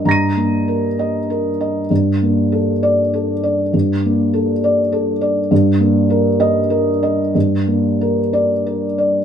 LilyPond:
\new Staff \with { instrumentName = "Felt piano" } { \time 6/8 \key g \minor \tempo 4. = 65 << { <bes'' bes''' ees''''>2. | r4. d''4 r8 | r2. | r4. ees''4 r8 |
r4. d''4 r8 | } \\ { <g, ees''>8 bes8 bes'8 ees''8 bes'8 ees''8 | g,8 bes8 a'4 a'8 d''8 | g,8 bes8 a'8 d''8 a'8 d''8 | g,8 bes8 bes'4 bes'8 ees''8 |
g,8 bes8 bes'4 bes'8 d''8 | } >> }